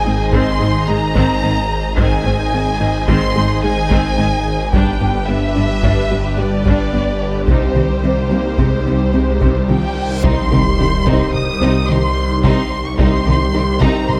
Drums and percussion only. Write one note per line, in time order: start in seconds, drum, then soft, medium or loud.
0.33 taiko medium
1.16 taiko medium
1.98 taiko medium
3.08 taiko medium
3.91 taiko medium
4.73 taiko medium
5.83 taiko medium
6.66 taiko medium
7.48 taiko medium
8.58 taiko medium
9.41 taiko medium
10.24 taiko medium
11.07 taiko medium
11.34 taiko mid medium
12.44 taiko medium
12.99 taiko medium
13.82 taiko medium
14.09 taiko mid medium